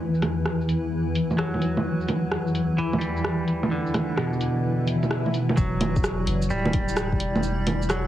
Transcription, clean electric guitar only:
1.38 2.96 F#3 medium
2.78 4.36 E3 medium
2.99 4.53 G3 soft
3.71 5.29 D3 medium
4.18 5.75 B2 medium
5.57 7.15 F#3 medium
6.50 8.07 G3 medium
7.90 8.07 F#3 medium

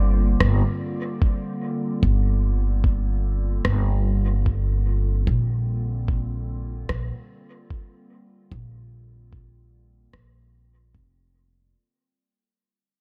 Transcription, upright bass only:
0.00 0.37 G1 medium
0.41 0.61 G1 medium
2.03 3.62 G1 medium
3.65 5.24 G1 medium
5.27 6.86 A#1 medium
6.89 7.10 A#1 medium
8.52 10.10 A#1 medium
10.14 10.94 A#1 medium
10.94 11.72 F1 medium

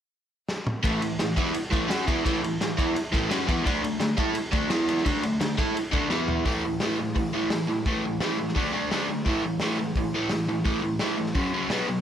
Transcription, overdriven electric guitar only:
0.83 1.00 A2 medium
0.83 1.01 E3 medium
0.83 1.01 A3 medium
1.01 1.16 A2 medium
1.01 1.16 E3 medium
1.19 1.33 A2 medium
1.19 1.34 E3 medium
1.36 1.54 E3 medium
1.36 1.54 B3 loud
1.36 1.54 E4 medium
1.55 muted overdriven electric guitar stroke medium
1.71 1.88 A2 medium
1.71 1.89 E3 medium
1.71 1.89 A3 loud
1.89 2.06 F#3 medium
1.89 2.06 C#4 medium
1.89 2.07 F#4 loud
2.07 2.24 E3 medium
2.07 2.25 B3 loud
2.07 2.25 E4 loud
2.24 2.41 A2 medium
2.24 2.41 E3 loud
2.24 2.42 A3 loud
2.42 2.56 A2 medium
2.42 2.57 E3 medium
2.61 2.75 A2 medium
2.61 2.75 E3 medium
2.77 2.94 E3 medium
2.77 2.95 B3 loud
2.77 2.95 E4 loud
2.95 muted overdriven electric guitar stroke medium
3.12 3.29 A2 medium
3.12 3.30 E3 medium
3.12 3.30 A3 loud
3.29 3.46 F#3 loud
3.29 3.47 C#4 medium
3.29 3.48 F#4 loud
3.47 3.64 E3 loud
3.47 3.65 B3 medium
3.47 3.65 E4 loud
3.64 3.81 D3 medium
3.64 3.82 A3 medium
3.64 3.83 D4 loud
3.82 3.96 D3 medium
3.82 3.97 A3 medium
4.00 4.14 D3 medium
4.00 4.14 A3 medium
4.17 4.35 A3 medium
4.17 4.35 E4 loud
4.17 4.35 A4 loud
4.35 muted overdriven electric guitar stroke medium
4.52 4.69 D3 medium
4.52 4.70 A3 medium
4.52 4.70 D4 medium
4.70 5.04 E3 medium
4.70 5.04 B3 loud
4.70 5.05 E4 loud
5.04 5.21 D3 medium
5.04 5.21 A3 medium
5.04 5.23 D4 loud
5.22 5.37 D3 medium
5.22 5.37 A3 medium
5.40 5.54 D3 medium
5.40 5.54 A3 medium
5.57 5.75 A3 loud
5.57 5.75 E4 loud
5.57 5.75 A4 loud
5.75 muted overdriven electric guitar stroke medium
5.92 6.09 D3 medium
5.92 6.10 A3 medium
5.92 6.10 D4 medium
6.10 6.44 E3 medium
6.10 6.45 B3 loud
6.10 6.45 E4 loud
6.45 6.62 A2 medium
6.45 6.62 E3 medium
6.45 6.62 A3 medium
6.65 6.79 A2 medium
6.65 6.80 E3 medium
6.81 6.97 A2 medium
6.81 6.97 E3 medium
6.81 6.98 A3 medium
6.99 7.14 A2 medium
6.99 7.15 E3 medium
7.15 7.31 A2 medium
7.15 7.31 E3 medium
7.33 7.50 A2 medium
7.33 7.50 E3 medium
7.33 7.50 A3 medium
7.51 7.67 A2 medium
7.51 7.67 E3 medium
7.68 7.84 A2 medium
7.68 7.85 E3 medium
7.87 8.03 A2 medium
7.87 8.03 E3 medium
7.87 8.03 A3 medium
8.04 8.20 A2 medium
8.04 8.20 E3 medium
8.21 8.37 A2 medium
8.21 8.37 E3 loud
8.21 8.38 A3 loud
8.38 8.54 A2 medium
8.38 8.54 E3 medium
8.55 8.72 D3 medium
8.55 8.72 A3 medium
8.55 8.73 D4 medium
8.73 8.89 D3 medium
8.73 8.90 A3 medium
8.73 8.90 D4 loud
8.91 9.07 D3 medium
8.91 9.08 A3 medium
8.91 9.08 D4 loud
9.08 9.24 D3 medium
9.08 9.24 A3 medium
9.25 9.42 A2 medium
9.25 9.42 E3 medium
9.25 9.43 A3 medium
9.44 9.59 A2 medium
9.44 9.59 E3 medium
9.61 9.77 A2 medium
9.61 9.78 E3 loud
9.61 9.78 A3 medium
9.79 9.94 A2 medium
9.79 9.94 E3 medium
9.97 10.12 A2 medium
9.97 10.12 E3 medium
10.14 10.30 A2 medium
10.14 10.30 E3 medium
10.14 10.31 A3 loud
10.32 10.47 A2 medium
10.32 10.47 E3 medium
10.49 10.63 A2 medium
10.49 10.64 E3 medium
10.64 10.81 A2 medium
10.64 10.81 E3 medium
10.64 10.82 A3 medium
10.82 10.99 A2 medium
10.82 10.98 E3 medium
11.00 11.16 A2 medium
11.00 11.17 E3 medium
11.00 11.17 A3 medium
11.18 11.34 A2 medium
11.18 11.34 E3 medium
11.35 11.52 F#2 medium
11.35 11.52 C#3 loud
11.35 11.52 F#3 loud
11.54 11.70 F#2 medium
11.54 11.70 C#3 medium
11.54 11.70 F#3 medium
11.70 11.87 B2 medium
11.70 11.87 F#3 medium
11.70 11.88 B3 medium
11.88 12.01 B2 medium
11.88 12.01 F#3 medium

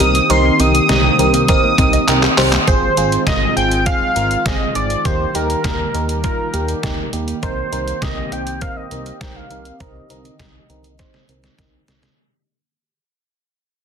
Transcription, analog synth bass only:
0.00 0.21 C2 loud
0.30 0.51 C2 loud
0.60 0.80 C2 loud
0.89 1.10 C2 loud
1.19 1.50 C2 loud
1.78 1.99 C2 loud
2.08 2.29 C2 loud
2.38 2.59 C2 loud
2.68 2.88 G#1 loud
2.97 3.18 G#1 loud
3.27 3.48 G#1 loud
3.57 3.88 G#1 loud
4.16 4.37 G#1 loud
4.46 4.66 G#1 loud
4.75 4.96 G#1 medium
5.05 5.26 D#2 loud
5.35 5.56 D#2 loud
5.64 5.85 D#2 loud
5.94 6.25 D#2 medium
6.54 6.74 D#2 medium
6.83 7.04 D#2 loud
7.13 7.34 D#2 medium
7.43 7.64 C2 loud
7.72 7.93 C2 loud
8.02 8.23 C2 medium
8.32 8.63 C2 medium
8.91 9.12 C2 medium
9.21 9.42 C2 medium
9.51 9.72 C2 medium
9.80 10.01 C2 loud
10.10 10.31 C2 loud
10.39 10.60 C2 medium
10.70 11.01 C2 medium
11.29 11.50 C2 loud
11.59 11.79 C2 medium
11.88 12.09 C2 medium

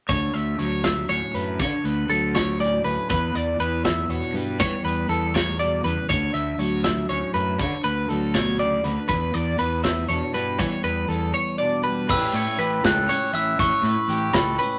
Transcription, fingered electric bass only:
0.09 0.32 D2 medium
0.34 0.57 D2 medium
0.59 1.05 D2 medium
1.08 1.20 D2 medium
1.34 1.61 F#2 medium
1.59 1.71 D3 medium
1.84 2.07 D2 medium
2.08 2.80 D2 medium
2.83 2.95 D2 medium
3.10 3.33 E2 medium
3.34 3.57 E2 medium
3.59 4.05 E2 medium
4.08 4.20 E2 medium
4.33 4.60 G2 medium
4.60 4.71 E3 medium
4.83 5.06 E2 medium
5.08 5.80 E2 medium
5.84 5.96 E2 medium
6.10 6.32 D2 medium
6.33 6.56 D2 medium
6.58 7.04 D2 medium
7.09 7.20 D2 medium
7.34 7.61 F#2 medium
7.59 7.71 D3 loud
7.84 8.07 D2 medium
8.09 8.80 D2 medium
8.84 8.95 D2 medium
9.09 9.32 E2 medium
9.34 9.57 E2 medium
9.59 10.05 E2 medium
10.08 10.20 E2 medium
10.33 10.59 G2 medium
10.59 10.70 E3 medium
10.83 11.06 E2 medium
11.08 11.31 E2 medium
12.09 12.21 A1 medium
12.32 12.44 A2 loud
12.58 12.81 A1 medium
12.84 13.07 C#2 loud
13.33 13.56 A1 medium
13.59 13.70 A1 loud
13.82 13.94 A2 loud
14.08 14.31 A1 medium
14.34 14.56 C#2 medium

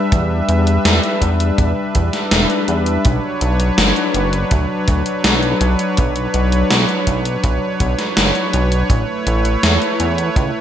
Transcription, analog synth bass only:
0.12 0.42 E2 medium
0.49 0.78 E2 medium
0.85 1.00 E2 loud
1.22 1.52 E2 medium
1.58 1.73 E2 medium
1.95 2.10 E2 loud
2.31 2.46 E1 loud
2.68 2.98 E2 medium
3.05 3.20 B1 loud
3.41 3.71 B1 loud
3.78 3.93 F#1 medium
4.15 4.44 F#1 loud
4.51 4.66 D2 loud
4.88 5.03 D2 loud
5.24 5.54 B1 loud
5.61 5.76 B1 medium
5.98 6.28 B1 loud
6.34 6.64 B1 medium
6.71 6.86 B1 loud
7.07 7.37 B1 medium
7.44 7.59 B1 medium
7.80 7.95 B1 medium
8.17 8.32 F#1 loud
8.54 8.83 B1 medium
8.90 9.05 A1 loud
9.27 9.56 A1 loud
9.63 9.78 E2 medium
10.00 10.30 E2 loud
10.36 10.51 C#2 loud

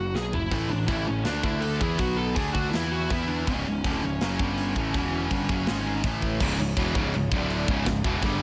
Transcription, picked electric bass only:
0.00 0.14 F#1 medium
0.14 0.32 B1 medium
0.34 0.51 F#1 medium
0.52 0.69 A1 medium
0.73 0.88 A1 medium
0.88 1.06 A1 loud
1.10 1.25 A1 medium
1.26 1.43 D2 medium
1.44 1.79 D2 medium
1.81 1.98 E2 medium
1.99 2.34 B1 medium
2.36 2.54 D2 medium
2.55 2.73 D2 medium
2.74 3.08 E2 medium
3.11 3.45 E2 medium
3.47 3.65 C#1 medium
3.68 3.84 C#1 medium
3.85 4.02 D1 medium
4.05 4.21 C#1 medium
4.22 4.39 F#1 medium
4.40 4.74 G1 medium
4.76 4.93 A1 medium
4.94 5.29 E1 medium
5.31 5.48 G1 loud
5.49 5.67 F#1 medium
5.69 6.03 G#1 medium
6.04 6.38 A1 medium
6.41 6.58 C#1 medium
6.60 6.76 C#1 medium
6.77 6.94 E1 loud
6.95 7.13 C#1 loud
7.14 7.31 C#1 medium
7.32 7.66 D1 medium
7.68 7.85 C#1 medium
7.87 8.04 C#1 medium
8.04 8.22 E1 loud
8.23 8.40 G1 loud

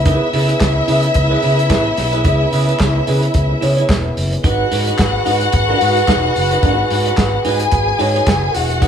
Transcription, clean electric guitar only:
0.06 0.27 E4 medium
0.06 0.27 G#4 medium
0.06 0.28 B4 loud
0.33 0.49 E4 medium
0.33 0.48 G#4 medium
0.33 0.47 B4 medium
0.49 0.63 E4 soft
0.49 0.62 G#4 medium
0.49 0.62 B4 medium
0.76 muted clean electric guitar stroke soft
0.88 1.08 E4 medium
0.88 1.03 G#4 medium
0.88 1.02 B4 medium
1.03 muted clean electric guitar stroke soft
1.15 muted clean electric guitar stroke soft
1.30 1.41 E4 medium
1.30 1.42 G#4 medium
1.30 1.43 B4 medium
1.42 1.59 E4 medium
1.42 1.58 G#4 medium
1.42 1.57 B4 medium
1.58 muted clean electric guitar stroke soft
1.70 1.90 E4 medium
1.70 1.85 G#4 medium
1.70 1.84 B4 loud
1.85 muted clean electric guitar stroke soft
1.98 muted clean electric guitar stroke soft
2.12 2.23 E4 soft
2.12 2.24 G#4 soft
2.12 2.25 B4 medium
2.24 2.44 E4 medium
2.24 2.45 G#4 medium
2.24 2.46 B4 medium
2.52 2.68 E4 medium
2.52 2.67 G#4 medium
2.52 2.66 B4 medium
2.67 2.82 E4 medium
2.67 2.81 G#4 medium
2.67 2.81 B4 medium
2.95 muted clean electric guitar stroke soft
3.07 3.27 E4 medium
3.07 3.23 G#4 medium
3.07 3.21 B4 medium
3.22 muted clean electric guitar stroke soft
3.35 muted clean electric guitar stroke soft
3.49 muted clean electric guitar stroke soft
3.61 3.78 E4 medium
3.61 3.77 G#4 medium
3.61 3.76 C#5 medium
3.77 3.88 E4 medium
3.77 3.88 G#4 medium
3.77 3.90 C#5 medium
3.89 muted clean electric guitar stroke soft
4.05 muted clean electric guitar stroke soft
4.32 muted clean electric guitar stroke soft
4.44 4.64 D#4 medium
4.44 4.64 F#4 medium
4.44 4.65 B4 loud
4.71 4.88 D#4 medium
4.71 4.87 F#4 medium
4.71 4.86 B4 medium
4.87 5.01 D#4 medium
4.87 5.01 F#4 medium
4.87 5.00 B4 medium
5.14 muted clean electric guitar stroke soft
5.26 5.46 D#4 medium
5.26 5.41 F#4 medium
5.26 5.40 B4 medium
5.41 muted clean electric guitar stroke soft
5.53 muted clean electric guitar stroke soft
5.69 5.79 D#4 medium
5.69 5.81 F#4 medium
5.69 5.82 B4 medium
5.81 5.97 D#4 medium
5.81 5.97 F#4 medium
5.81 5.96 B4 medium
5.97 muted clean electric guitar stroke soft
6.09 6.28 D#4 medium
6.09 6.24 F#4 medium
6.09 6.23 B4 medium
6.24 muted clean electric guitar stroke soft
6.36 muted clean electric guitar stroke soft
6.51 6.62 D#4 soft
6.51 6.63 F#4 medium
6.51 6.64 B4 medium
6.63 6.84 D#4 medium
6.63 6.84 F#4 medium
6.63 6.85 B4 medium
6.90 7.06 D#4 soft
6.90 7.05 F#4 medium
6.90 7.04 B4 medium
7.06 7.20 D#4 soft
7.06 7.19 F#4 medium
7.06 7.19 B4 medium
7.33 muted clean electric guitar stroke soft
7.45 7.65 D#4 medium
7.45 7.61 F#4 medium
7.45 7.59 B4 medium
7.60 muted clean electric guitar stroke medium
7.72 muted clean electric guitar stroke soft
7.87 muted clean electric guitar stroke soft
7.99 8.15 D#4 medium
7.99 8.14 F#4 medium
7.99 8.13 C#5 medium
8.14 8.26 D#4 soft
8.14 8.27 F#4 medium
8.14 8.28 C#5 medium
8.27 muted clean electric guitar stroke soft
8.43 muted clean electric guitar stroke soft
8.70 muted clean electric guitar stroke soft
8.82 8.88 D#4 medium
8.82 8.88 G#4 medium
8.82 8.88 B4 medium

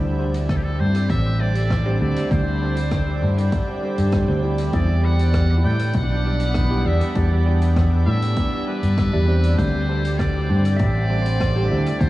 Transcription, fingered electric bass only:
0.00 0.77 D2 loud
0.80 1.07 G2 medium
1.10 1.98 A1 loud
2.01 2.14 D2 medium
2.31 3.19 D2 medium
3.22 3.49 G2 medium
3.98 4.25 G2 medium
4.28 4.71 D2 medium
4.74 5.62 E2 loud
5.65 5.91 A2 medium
5.95 6.83 B1 loud
6.86 6.99 E2 loud
7.16 8.04 E2 loud
8.07 8.34 A2 medium
8.83 9.10 G2 medium
9.13 9.56 E2 loud
9.58 10.46 D2 loud
10.50 10.76 G2 medium
10.80 11.68 A1 loud
11.71 11.84 D2 medium
12.01 12.10 D2 loud

